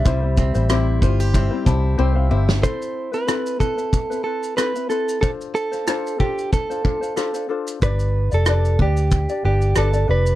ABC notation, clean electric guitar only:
X:1
M:4/4
L:1/16
Q:"Swing 16ths" 1/4=93
K:Am
V:1 name="Clean electric guitar"
e8- e2 z6 | c3 B3 A4 A2 B2 A2 | A2 A4 G2 A6 z2 | B3 A3 G4 G2 A2 B2 |]